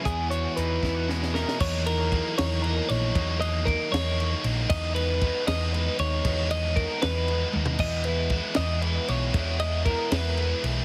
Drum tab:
CC |------------|x-----------|------------|x-----------|
RD |------------|--x-x-x-x-x-|x-x-x-x-x-x-|--x-x-x-x-x-|
HH |x-x-x-------|------------|------------|------------|
SD |------o-oooo|------o-----|------o-----|------o-----|
T1 |------------|------------|------------|------------|
FT |------------|------------|------------|------------|
BD |o-----o-----|o---o-------|o---o-------|o---o-------|

CC |------------|x-----------|------------|
RD |x-x-x-x-x---|--x-x-x-x-x-|x-x-x-x-x-x-|
HH |------------|------------|------------|
SD |------o-----|------o-----|------o-----|
T1 |----------o-|------------|------------|
FT |-----------o|------------|------------|
BD |o---o-------|o---o-------|o---o-------|